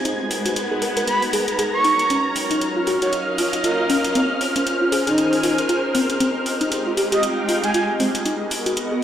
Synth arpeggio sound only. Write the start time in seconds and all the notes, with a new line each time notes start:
0.05 D#4
0.46 F#4
0.71 G#4
0.82 A#4
0.97 A#4
1.33 G#4
1.59 G#4
1.85 D#4
2.10 C#4
2.51 D#4
2.76 F4
2.87 F#4
3.02 F#4
3.38 F4
3.64 F4
3.90 C#4
4.15 C4
4.56 C#4
4.82 F4
4.92 G#4
5.07 G#4
5.44 F4
5.69 F4
5.95 C4
6.20 C4
6.61 D#4
6.87 F4
6.97 G4
7.12 G4
7.49 F4
7.74 F4
8.00 C4
8.26 D#4
8.66 F#4
8.92 G#4